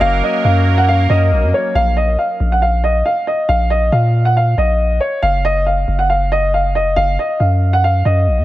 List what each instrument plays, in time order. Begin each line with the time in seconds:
Already playing: grand piano F#3 C#4 A#4, analog synth pad F#3 A#3 C#4 A#4
0.01 808-style bass F#1, grand piano F5
0.23 grand piano D#5
0.44 808-style bass F#2, grand piano F5
0.78 grand piano F#5
0.89 grand piano F5
1.10 808-style bass F#2, grand piano D#5
1.32 808-style bass A#1
1.43 808-style bass F#2
1.54 grand piano C#5
1.75 808-style bass A#1, grand piano F5
1.97 grand piano D#5
2.19 grand piano F5
2.40 808-style bass A#1
2.52 grand piano F#5
2.62 grand piano F5
2.84 grand piano D#5
3.06 grand piano F5
3.27 grand piano D#5
3.49 808-style bass A#1, grand piano F5
3.70 grand piano D#5
3.92 808-style bass A#2, grand piano F5
4.25 grand piano F#5
4.37 grand piano F5
4.58 808-style bass A#1, grand piano D#5
5.00 grand piano C#5
5.22 808-style bass F#1, grand piano F5
5.45 grand piano D#5
5.66 grand piano F5
5.88 808-style bass F#1
5.99 grand piano F#5
6.10 grand piano F5
6.32 grand piano D#5
6.54 grand piano F5
6.75 808-style bass F1, grand piano D#5
6.96 808-style bass F#1, grand piano F5
7.19 grand piano D#5
7.40 808-style bass F#2, grand piano F5
7.73 grand piano F#5
7.84 grand piano F5
8.05 808-style bass F#2, grand piano D#5
8.27 808-style bass A#1
8.38 808-style bass F#2